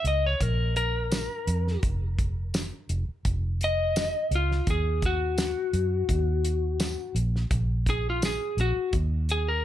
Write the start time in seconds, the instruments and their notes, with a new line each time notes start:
0.04 fingered electric bass C#2, lead electric guitar D#5, closed hi-hat
0.26 lead electric guitar C#5
0.40 fingered electric bass A#1, lead electric guitar A#4, kick, closed hi-hat
0.76 lead electric guitar A#4, closed hi-hat
1.12 snare, closed hi-hat, tambourine
1.47 fingered electric bass F2, closed hi-hat
1.68 snare
1.83 fingered electric bass F1, kick, closed hi-hat
2.19 kick, closed hi-hat
2.54 snare, closed hi-hat, tambourine
2.89 fingered electric bass F1, closed hi-hat
3.09 muted fingered electric bass stroke
3.25 fingered electric bass F1, kick, closed hi-hat
3.61 lead electric guitar D#5, closed hi-hat
3.96 snare, closed hi-hat, tambourine
4.31 fingered electric bass C#2, closed hi-hat
4.35 lead electric guitar F4
4.51 snare
4.67 fingered electric bass D#2, lead electric guitar G#4, kick, closed hi-hat
5.02 lead electric guitar F#4, kick, closed hi-hat
5.38 snare, closed hi-hat, tambourine
5.73 fingered electric bass F#2, closed hi-hat
6.09 fingered electric bass D#2, kick, closed hi-hat
6.45 closed hi-hat
6.80 snare, closed hi-hat, tambourine
7.15 fingered electric bass A#1, closed hi-hat
7.36 snare
7.51 fingered electric bass A#1, kick, closed hi-hat
7.86 lead electric guitar G#4, kick, closed hi-hat
8.10 lead electric guitar F4
8.22 lead electric guitar G#4, snare, closed hi-hat, tambourine
8.57 fingered electric bass A#1, lead electric guitar F#4, closed hi-hat
8.76 muted fingered electric bass stroke
8.93 fingered electric bass D#2, kick, closed hi-hat
9.29 lead electric guitar G#4, closed hi-hat
9.48 lead electric guitar A#4